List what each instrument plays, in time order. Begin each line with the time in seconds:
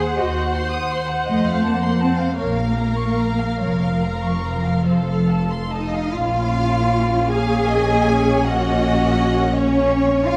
Already playing: cello section G#4, viola section C5, violin section F#5
0.02 violin section F#5
0.19 double bass section D#2, cello section F#4, violin section D#5
0.37 violin section F#5
0.54 violin section C6
0.72 violin section D#6
0.91 violin section C6
1.09 violin section F#5
1.27 double bass section F2, cello section A3, violin section D#5
1.46 violin section F5
1.64 cello section A#3, violin section A5
1.81 violin section C6
2.00 cello section C4, violin section A5
2.17 violin section F5
2.37 double bass section A#1, cello section A#3, viola section A#4, violin section C#5 F5
2.57 violin section F5
2.77 violin section A#5
2.98 violin section C#6
3.18 violin section A#5
3.38 violin section F5
3.60 double bass section F1, cello section F3, violin section C#5
3.81 violin section F5
4.03 violin section A#5
4.24 violin section C#6
4.45 violin section A#5
4.66 violin section F5
4.86 double bass section F1, viola section A4, violin section C5
5.08 violin section F5
5.29 violin section A5
5.51 violin section C6
5.71 cello section D#4, violin section D#5 A5
5.95 violin section F5
6.13 double bass section A#1, viola section A#3 C#4, cello section F4, violin section F5
7.31 cello section G#4, violin section F5 G#5
7.70 violin section D#5
8.09 violin section C#5
8.46 cello section F#4, violin section D#5 F#5
9.54 cello section C#4, violin section C#5
10.26 cello section F4, violin section F5